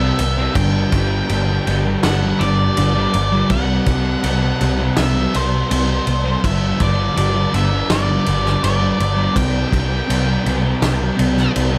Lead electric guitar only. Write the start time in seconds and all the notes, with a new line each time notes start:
Already playing: E5
0.55 G5
2.04 F#5
2.39 D5
3.51 F#5
4.98 E5
5.36 C5
6.45 E5
6.83 D5
7.18 D5
7.55 E5
7.91 D5
8.64 D5
9.37 G5